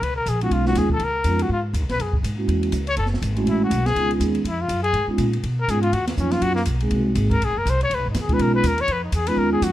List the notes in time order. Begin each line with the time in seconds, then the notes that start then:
0.01 C#2 B4, kick, ride
0.16 A#4
0.26 A#1 G#4, kick, hi-hat pedal, ride
0.41 G#3 B3 C#4 D#4 F4 F#4, ride
0.51 B1 F4, kick, ride
0.65 G#3 B3 C#4 D#4 F4 F#4, snare
0.75 D#2 G#4, kick, snare, hi-hat pedal, ride
0.90 A4, kick
0.99 C#2, kick, ride
1.04 A#4
1.24 F2 G#3 B3 C#4 D#4 F4, kick, hi-hat pedal, ride
1.39 F#4, ride
1.49 G#2 F4, kick
1.73 D#2, kick, hi-hat pedal, ride
1.81 C#2
1.89 B1 B4, snare, ride
1.99 F#2 G#4, kick, ride
2.13 kick
2.23 G#2, kick, hi-hat pedal, ride
2.36 G#3 A#3 C#4 E4 F#4
2.48 E2, kick, ride
2.63 ride
2.72 C#2, kick, hi-hat pedal, ride
2.87 C#5, ride
2.97 F#1 A4, kick, ride
3.06 snare
3.14 snare
3.22 G#1, kick, hi-hat pedal, ride
3.35 G#3 A3 C#4 E4 F#4, ride
3.46 A1 E4, kick, ride
3.64 F#4
3.70 B1, kick, hi-hat pedal, ride
3.86 G#4, snare, ride
3.95 C#2 G#3 B3 C#4 D#4 F4, kick, ride
4.11 ride
4.20 D#2 G#3 B3 C#4 D#4 G#4, kick, hi-hat pedal, ride
4.35 ride
4.44 F2, kick, ride
4.48 E4
4.61 F4
4.68 F#2, kick, hi-hat pedal, ride
4.83 G#4, ride
4.93 G#2, kick, ride
5.07 G#3 B3 C#4 D#4 F4, muted upright bass stroke
5.18 A#2, kick, hi-hat pedal, ride
5.33 ride
5.43 B2, kick, ride
5.61 A#4
5.68 G#2 G#3 B3 C#4 D#4 F4 G#4, kick, hi-hat pedal, ride
5.82 F4, ride
5.93 D#2 F#4, kick, ride
6.07 A#3, snare, ride
6.17 F2 F#3 A#3 C#4 D#4 F4, kick, hi-hat pedal
6.31 F4, snare, ride
6.42 F#2 F#4, kick, ride
6.55 A#3, snare
6.65 B1, kick, hi-hat pedal, ride
6.80 G#3 A#3 C4 D#4 G#4, ride
6.91 C2 G#3 A#3 C4 D#4 F#4, kick, ride
7.15 G#1 G#3 A#3 C4 D#4 G#4, kick, hi-hat pedal, ride
7.31 A#4, kick, ride
7.41 A#1 G#4, ride
7.49 G#1
7.57 F#1 A#4
7.65 C2, kick, hi-hat pedal, ride
7.70 C5
7.81 C#5, ride
7.90 C#2, kick, ride
7.94 B1 B4
8.06 G#1 D#4
8.14 D#2, kick, snare, hi-hat pedal, ride
8.20 G#4
8.28 G#3 B3 C#4 D#4 F4, kick, ride
8.33 B4
8.39 B1 A#4, kick, ride
8.55 B4
8.63 D#2 A#4, kick, hi-hat pedal, ride
8.78 C#5, ride
8.88 F2, kick, ride
8.92 B4
9.04 D#4
9.12 E2 G#4, kick, hi-hat pedal, ride
9.27 G#3 B3 C#4 D#4 F4 B4, ride
9.37 D#2 A#4, kick
9.53 G#4
9.62 F2 F#4, kick, hi-hat pedal, ride